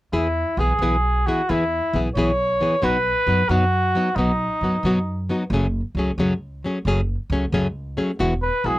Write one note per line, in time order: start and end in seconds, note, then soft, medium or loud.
0.13 0.42 E2 medium
0.13 0.27 E3 soft
0.13 0.27 B3 medium
0.13 0.60 E4 medium
0.13 0.27 E4 medium
0.13 0.27 G#4 medium
0.57 0.72 B1 medium
0.57 0.72 E3 soft
0.57 0.72 B3 soft
0.57 0.73 E4 soft
0.57 1.28 G#4 medium
0.57 0.73 G#4 soft
0.79 1.24 B1 medium
0.79 0.95 E3 medium
0.79 0.95 B3 medium
0.79 0.96 E4 medium
0.79 0.95 G#4 medium
1.26 1.40 E3 soft
1.26 1.40 B3 soft
1.26 1.41 E4 soft
1.26 1.51 F#4 medium
1.26 1.41 G#4 medium
1.49 1.78 E2 medium
1.49 1.63 E3 medium
1.49 1.63 B3 medium
1.49 2.00 E4 medium
1.49 1.63 E4 medium
1.49 1.64 G#4 medium
1.93 2.08 B1 medium
1.93 2.07 E3 soft
1.93 2.08 B3 soft
1.93 2.08 E4 medium
1.93 2.08 G#4 medium
2.15 2.59 B1 medium
2.15 2.30 E3 medium
2.15 2.31 B3 medium
2.15 2.30 E4 medium
2.15 2.31 G#4 medium
2.15 2.85 C#5 medium
2.60 2.74 E3 medium
2.60 2.75 B3 medium
2.60 2.75 E4 soft
2.60 2.75 G#4 medium
2.82 3.12 B1 medium
2.82 2.96 B2 medium
2.82 2.97 F#3 medium
2.82 2.97 B3 medium
2.82 2.97 D#4 medium
2.82 2.97 F#4 medium
2.82 3.51 B4 medium
3.27 3.42 F#2 medium
3.27 3.41 F#3 soft
3.27 3.41 B3 soft
3.27 3.42 D#4 soft
3.27 3.42 F#4 soft
3.49 3.93 F#2 medium
3.49 3.64 B2 medium
3.49 3.64 F#3 medium
3.49 3.64 B3 medium
3.49 3.64 D#4 medium
3.49 4.17 F#4 medium
3.49 3.64 F#4 medium
3.95 4.08 F#3 medium
3.95 4.09 B3 soft
3.95 4.09 D#4 medium
3.95 4.09 F#4 medium
4.16 4.45 B1 medium
4.16 4.31 B2 medium
4.16 4.31 F#3 medium
4.16 4.31 B3 medium
4.16 5.28 D#4 medium
4.16 4.31 D#4 medium
4.16 4.31 F#4 medium
4.61 4.76 F#2 medium
4.61 4.76 F#3 soft
4.61 4.76 B3 soft
4.61 4.76 D#4 soft
4.61 4.76 F#4 soft
4.83 5.27 F#2 medium
4.83 4.98 B2 medium
4.83 4.98 F#3 medium
4.83 4.98 B3 medium
4.83 4.98 D#4 medium
4.83 4.99 F#4 medium
5.29 5.43 F#3 medium
5.29 5.43 B3 medium
5.29 5.43 D#4 medium
5.29 5.44 F#4 soft
5.50 5.80 F#1 medium
5.50 5.65 F#2 medium
5.50 5.66 C#3 medium
5.50 5.66 F#3 medium
5.50 5.66 A3 medium
5.50 5.66 C#4 medium
5.50 5.66 G#4 medium
5.95 6.10 C#2 medium
5.95 6.10 F#3 soft
5.95 6.11 C#4 medium
5.99 6.11 A3 medium
5.99 6.11 G#4 soft
6.18 6.62 C#2 medium
6.18 6.32 F#2 medium
6.18 6.33 C#3 medium
6.18 6.33 F#3 medium
6.18 6.33 A3 medium
6.18 6.33 C#4 medium
6.18 6.33 G#4 medium
6.64 6.77 F#3 soft
6.64 6.78 A3 soft
6.64 6.78 C#4 medium
6.64 6.78 G#4 medium
6.85 7.14 F#1 medium
6.85 7.00 F#2 medium
6.85 7.00 C#3 medium
6.85 7.00 F#3 medium
6.85 7.00 A3 medium
6.85 7.00 C#4 medium
6.85 7.00 G#4 medium
7.30 7.44 C#2 medium
7.30 7.44 F#3 soft
7.30 7.45 A3 medium
7.30 7.45 C#4 medium
7.30 7.45 G#4 medium
7.52 7.96 C#2 medium
7.52 7.67 F#2 medium
7.52 7.67 C#3 medium
7.52 7.67 F#3 medium
7.52 7.67 A3 medium
7.52 7.67 C#4 medium
7.52 7.67 G#4 medium
7.97 8.10 F#3 medium
7.97 8.11 A3 medium
7.97 8.11 C#4 medium
7.97 8.11 G#4 medium
8.19 8.48 E1 medium
8.19 8.33 E3 medium
8.19 8.33 G#3 medium
8.19 8.33 B3 medium
8.19 8.33 E4 medium
8.19 8.33 F#4 medium
8.42 8.67 B4 medium
8.64 8.78 B1 medium
8.64 8.77 G#3 soft
8.64 8.78 B3 soft
8.64 8.78 E4 soft
8.64 8.79 F#4 soft
8.64 8.79 G#4 medium